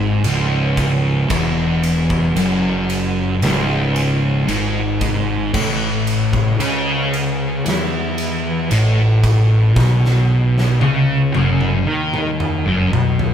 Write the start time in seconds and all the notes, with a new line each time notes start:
Already playing: G#1 G#2
0.23 C#1 C#2, ride
0.77 kick, ride
1.29 E1 E2, kick, ride
1.83 ride
2.10 kick
2.36 F#1 F#2, ride
2.90 ride
3.42 C#1 C#2, snare, ride
3.96 ride
4.47 G#1 G#2, ride
5.01 kick, ride
5.54 A1 A2, kick, crash
6.07 ride
6.33 kick
6.59 C#2 C#3, ride
7.14 ride
7.65 E2 E3, snare, ride
8.18 ride
8.70 A1 A2, ride
9.24 kick, ride
9.76 B1 B2, kick, snare
10.05 snare
10.58 snare
10.81 C#2 C#3, high tom
11.33 F#1 F#2, high tom
11.61 mid tom
11.86 D#2 D#3
12.14 mid tom
12.40 mid tom
12.66 F#1 F#2
12.92 B1 B2, mid tom
13.19 floor tom